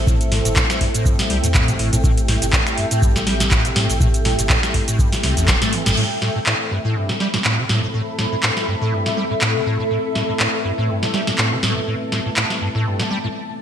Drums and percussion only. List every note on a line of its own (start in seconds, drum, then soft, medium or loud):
0.07 kick loud
0.07 mid tom medium
0.07 shaker medium
0.21 closed hi-hat soft
0.21 shaker soft
0.32 snare medium
0.32 mid tom medium
0.32 open hi-hat loud
0.45 closed hi-hat medium
0.45 shaker medium
0.56 kick loud
0.56 clap loud
0.56 shaker medium
0.70 finger snap medium
0.70 snare medium
0.70 closed hi-hat soft
0.70 shaker soft
0.81 kick medium
0.81 open hi-hat loud
0.94 closed hi-hat medium
0.94 shaker medium
1.05 kick loud
1.05 shaker medium
1.19 snare medium
1.19 open hi-hat medium
1.19 shaker soft
1.30 open hi-hat loud
1.44 closed hi-hat medium
1.44 shaker medium
1.54 kick loud
1.54 clap loud
1.54 shaker medium
1.68 closed hi-hat medium
1.68 mid tom medium
1.68 shaker soft
1.79 open hi-hat loud
1.93 closed hi-hat medium
1.93 mid tom medium
1.93 shaker medium
2.04 kick loud
2.04 mid tom medium
2.04 shaker medium
2.17 closed hi-hat soft
2.17 shaker soft
2.28 snare medium
2.28 mid tom medium
2.28 open hi-hat loud
2.42 closed hi-hat medium
2.42 shaker medium
2.53 kick loud
2.53 clap loud
2.53 shaker medium
2.67 finger snap medium
2.67 closed hi-hat soft
2.67 shaker soft
2.78 open hi-hat loud
2.91 closed hi-hat medium
2.91 shaker medium
3.02 kick loud
3.02 shaker medium
3.16 snare medium
3.16 shaker soft
3.27 snare medium
3.27 open hi-hat loud
3.40 snare medium
3.40 closed hi-hat medium
3.40 shaker medium
3.51 kick loud
3.51 clap loud
3.51 shaker medium
3.65 closed hi-hat medium
3.65 shaker soft
3.76 snare medium
3.76 mid tom medium
3.76 open hi-hat loud
3.90 open hi-hat medium
3.90 shaker medium
4.00 kick loud
4.00 mid tom medium
4.00 shaker medium
4.14 closed hi-hat medium
4.14 shaker soft
4.25 snare medium
4.25 mid tom medium
4.25 open hi-hat medium
4.39 closed hi-hat medium
4.39 shaker medium
4.49 kick loud
4.49 clap loud
4.49 shaker medium
4.63 finger snap medium
4.63 snare medium
4.63 closed hi-hat soft
4.63 shaker soft
4.74 kick medium
4.74 open hi-hat loud
4.88 closed hi-hat medium
4.88 shaker medium
4.99 kick loud
4.99 shaker medium
5.12 snare medium
5.12 open hi-hat medium
5.12 shaker soft
5.23 snare medium
5.23 open hi-hat loud
5.37 closed hi-hat medium
5.37 shaker medium
5.48 kick loud
5.48 snare medium
5.48 clap loud
5.48 shaker medium
5.62 snare medium
5.62 closed hi-hat medium
5.62 mid tom medium
5.62 shaker soft
5.73 open hi-hat loud
5.86 snare medium
5.86 closed hi-hat medium
5.86 mid tom medium
5.86 shaker medium
5.97 crash medium
6.22 snare medium
6.46 clap loud
7.09 snare medium
7.20 snare medium
7.34 snare medium
7.45 clap loud
7.69 snare medium
8.19 snare medium
8.43 clap loud
8.57 snare medium
9.06 snare medium
9.41 clap loud
10.15 snare medium
10.40 clap loud
11.03 snare medium
11.14 snare medium
11.27 snare medium
11.38 clap loud
11.63 snare medium
12.12 snare medium
12.37 clap loud
12.50 snare medium
12.99 snare medium